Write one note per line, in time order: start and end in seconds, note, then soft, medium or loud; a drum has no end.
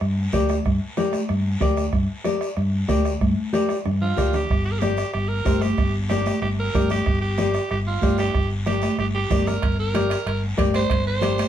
0.00 0.27 G2 medium
0.00 bombo rim medium
0.00 long guiro medium
0.17 high conga soft
0.32 0.59 D2 medium
0.32 0.56 G4 medium
0.32 0.56 A#4 medium
0.32 0.56 D5 medium
0.32 bombo low medium
0.32 bombo rim medium
0.32 high conga medium
0.32 short guiro medium
0.49 bombo rim medium
0.49 high conga medium
0.49 short guiro medium
0.65 0.78 G2 medium
0.65 bombo low medium
0.65 bombo rim medium
0.65 high conga soft
0.65 long guiro medium
0.97 1.20 G4 medium
0.97 1.20 A#4 medium
0.97 1.20 D5 medium
0.97 bombo rim medium
0.97 high conga medium
0.97 short guiro medium
1.12 bombo rim medium
1.12 high conga medium
1.12 short guiro medium
1.29 1.55 G2 medium
1.29 bombo rim medium
1.29 long guiro medium
1.45 high conga soft
1.61 1.87 D2 medium
1.61 1.84 G4 medium
1.61 1.84 A#4 medium
1.61 1.84 D5 medium
1.61 bombo low medium
1.61 bombo rim medium
1.61 high conga medium
1.61 short guiro medium
1.77 bombo rim medium
1.77 short guiro medium
1.93 2.06 G2 medium
1.93 bombo low medium
1.93 bombo rim medium
1.93 high conga soft
1.93 long guiro medium
2.24 2.47 G4 medium
2.24 2.48 A#4 medium
2.24 2.48 D5 medium
2.24 bombo rim medium
2.24 high conga medium
2.24 short guiro medium
2.41 bombo rim medium
2.41 short guiro medium
2.57 2.83 G2 medium
2.57 bombo rim medium
2.57 long guiro medium
2.73 high conga soft
2.88 3.15 D2 medium
2.88 3.11 G4 medium
2.88 3.12 A#4 medium
2.88 3.12 D5 medium
2.88 bombo low medium
2.88 bombo rim medium
2.88 high conga medium
2.88 short guiro medium
3.05 bombo rim medium
3.05 short guiro medium
3.21 3.34 G2 medium
3.21 bombo low medium
3.21 bombo rim medium
3.21 high conga medium
3.21 long guiro medium
3.53 3.76 G4 medium
3.53 3.76 A#4 medium
3.53 3.76 D5 medium
3.53 bombo rim medium
3.53 high conga medium
3.53 short guiro medium
3.69 bombo rim medium
3.69 high conga medium
3.69 short guiro medium
3.85 4.11 G2 medium
3.85 bombo rim medium
3.85 low conga medium
3.85 long guiro medium
4.02 4.37 F4 medium
4.02 low conga medium
4.17 4.43 D2 medium
4.17 4.40 G4 medium
4.17 4.40 A#4 medium
4.17 4.40 D5 medium
4.17 bombo low medium
4.17 bombo rim medium
4.17 short guiro medium
4.33 4.65 G4 medium
4.33 bombo rim medium
4.33 low conga medium
4.33 short guiro medium
4.49 5.01 G1 loud
4.49 bombo low medium
4.49 bombo rim medium
4.49 high conga soft
4.49 long guiro medium
4.65 4.73 G4 medium
4.72 4.81 A#4 medium
4.79 5.13 G4 medium
4.79 5.04 G4 medium
4.79 5.04 A#4 medium
4.79 5.05 D5 medium
4.79 bombo rim medium
4.79 high conga medium
4.79 short guiro medium
4.97 bombo rim medium
4.97 short guiro medium
5.13 5.40 G1 medium
5.13 5.30 G4 medium
5.13 bombo rim medium
5.13 long guiro medium
5.28 5.64 A#4 loud
5.28 high conga soft
5.45 5.72 G1 medium
5.45 5.68 G4 medium
5.45 5.68 A#4 medium
5.45 5.68 C5 medium
5.45 bombo low medium
5.45 bombo rim medium
5.45 high conga medium
5.45 short guiro medium
5.61 5.94 G4 medium
5.61 bombo rim medium
5.61 high conga medium
5.61 short guiro medium
5.78 6.30 G1 loud
5.78 bombo low medium
5.78 bombo rim medium
5.78 high conga soft
5.78 long guiro medium
6.09 6.40 G4 medium
6.09 6.32 G4 medium
6.09 6.33 A#4 medium
6.09 6.33 D5 medium
6.09 bombo rim medium
6.09 high conga medium
6.09 short guiro medium
6.26 bombo rim medium
6.26 high conga medium
6.26 short guiro medium
6.41 6.68 G1 medium
6.41 6.49 G4 medium
6.41 bombo rim medium
6.41 long guiro medium
6.59 6.89 A#4 medium
6.59 high conga soft
6.74 7.00 G1 medium
6.74 6.97 G4 medium
6.74 6.97 A#4 medium
6.74 6.97 D5 medium
6.74 bombo low medium
6.74 bombo rim medium
6.74 high conga medium
6.74 low conga medium
6.74 short guiro medium
6.90 7.20 G4 loud
6.90 bombo rim medium
6.90 high conga medium
6.90 low conga medium
6.90 short guiro medium
7.05 7.57 G1 medium
7.05 bombo low medium
7.05 bombo rim medium
7.05 long guiro medium
7.21 7.67 G4 medium
7.38 7.61 G4 medium
7.38 7.61 A#4 medium
7.38 7.61 D5 medium
7.38 bombo rim medium
7.38 high conga medium
7.38 short guiro medium
7.54 bombo rim medium
7.54 short guiro medium
7.70 7.96 G1 medium
7.70 7.78 G4 medium
7.70 bombo rim medium
7.70 long guiro medium
7.86 8.17 F4 medium
7.86 high conga soft
8.02 8.28 G1 medium
8.02 8.25 G4 medium
8.02 8.25 A#4 medium
8.02 8.25 D5 medium
8.02 bombo low medium
8.02 bombo rim medium
8.02 high conga medium
8.02 short guiro medium
8.18 8.49 G4 medium
8.18 bombo rim medium
8.18 short guiro medium
8.33 8.86 G1 loud
8.33 bombo low medium
8.33 bombo rim medium
8.33 long guiro medium
8.66 8.89 G4 medium
8.66 8.97 G4 medium
8.66 8.89 A#4 medium
8.66 8.89 D5 medium
8.66 bombo rim medium
8.66 high conga medium
8.66 short guiro medium
8.82 bombo rim medium
8.82 high conga medium
8.82 short guiro medium
8.98 9.24 G1 medium
8.98 9.06 G4 medium
8.98 bombo rim medium
8.98 long guiro medium
9.15 9.49 G4 medium
9.15 high conga soft
9.30 9.56 G1 medium
9.30 9.53 G4 medium
9.30 9.53 A#4 medium
9.30 9.53 D5 medium
9.30 bombo low medium
9.30 bombo rim medium
9.30 high conga medium
9.30 low conga medium
9.30 short guiro medium
9.47 9.79 A#4 medium
9.47 bombo rim medium
9.47 low conga medium
9.47 short guiro medium
9.62 10.14 G1 medium
9.62 bombo low medium
9.62 bombo rim medium
9.62 high conga soft
9.62 high timbale medium
9.62 long guiro medium
9.80 10.24 A#4 medium
9.94 10.17 G4 medium
9.94 10.17 A#4 medium
9.94 10.17 D5 medium
9.94 bombo rim medium
9.94 high conga medium
9.94 high timbale medium
9.94 short guiro medium
10.10 bombo rim medium
10.10 high timbale medium
10.10 short guiro medium
10.26 10.52 G1 medium
10.26 10.42 A#4 medium
10.26 bombo rim medium
10.26 high timbale medium
10.26 long guiro medium
10.43 high conga soft
10.57 10.84 G1 medium
10.57 10.80 G4 medium
10.57 10.81 A#4 medium
10.57 10.81 D5 medium
10.57 bombo low medium
10.57 bombo rim medium
10.57 high conga medium
10.57 high timbale medium
10.57 short guiro medium
10.74 11.05 C5 loud
10.74 bombo rim medium
10.74 high conga medium
10.74 high timbale medium
10.74 short guiro medium
10.90 11.42 G1 loud
10.90 bombo low medium
10.90 bombo rim medium
10.90 high timbale medium
10.90 long guiro medium
11.07 11.48 C5 loud
11.21 11.44 G4 medium
11.21 11.45 A#4 medium
11.21 11.45 D5 medium
11.21 bombo rim medium
11.21 high conga medium
11.21 high timbale medium
11.21 short guiro medium
11.38 bombo rim medium
11.38 high conga medium
11.38 high timbale medium
11.38 short guiro medium